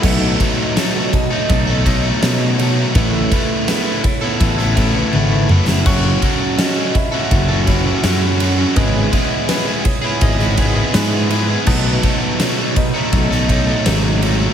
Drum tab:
CC |x---------------|----------------|x---------------|----------------|
RD |--x-x-x-x-x-x-x-|x-x-x-x-x-x-----|--x-x-x-x-x-x-x-|x-x-x-x-x-x-x-x-|
SD |----o-------o---|----o----o-----o|----o-------o---|----o----o--o---|
T1 |----------------|------------o---|----------------|----------------|
T2 |----------------|--------------o-|----------------|----------------|
BD |o-o---o-o-o-----|o-o---o-o-o-----|o-o---o-o-o-----|o-o---o-o-o-----|

CC |x---------------|
RD |--x-x-x-x-x-x-x-|
SD |----o----o--o---|
T1 |----------------|
T2 |----------------|
BD |o-o---o-o-o-----|